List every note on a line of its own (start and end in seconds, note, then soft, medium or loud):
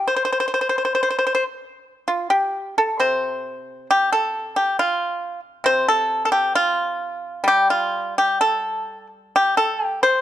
0.08 0.15 C5 medium
0.16 0.23 C5 medium
0.25 0.31 C5 medium
0.32 0.39 C5 soft
0.40 0.47 C5 medium
0.48 0.53 C5 soft
0.54 0.60 C5 soft
0.61 0.68 C5 soft
0.69 0.77 C5 soft
0.78 0.84 C5 soft
0.85 0.94 C5 medium
0.95 1.02 C5 soft
1.03 1.09 C5 medium
1.10 1.17 C5 soft
1.19 1.25 C5 medium
1.27 1.33 C5 soft
1.35 1.43 C5 medium
2.08 2.30 F4 medium
2.30 2.74 G4 medium
2.78 2.99 A4 medium
3.00 5.63 C3 medium
3.00 3.86 C5 medium
3.91 4.11 G4 medium
4.12 4.53 A4 medium
4.56 4.77 G4 medium
4.79 5.40 F4 medium
5.64 8.40 C3 medium
5.64 5.86 C5 medium
5.88 6.24 A4 medium
6.25 6.31 A4 medium
6.32 6.53 G4 medium
6.55 7.43 F4 medium
7.44 10.21 G3 medium
7.48 7.69 G4 medium
7.70 8.14 F4 medium
8.18 8.39 G4 medium
8.41 9.06 A4 medium
9.36 9.56 G4 medium
9.57 9.84 A4 medium
9.84 10.00 G4 medium
10.03 10.21 C5 medium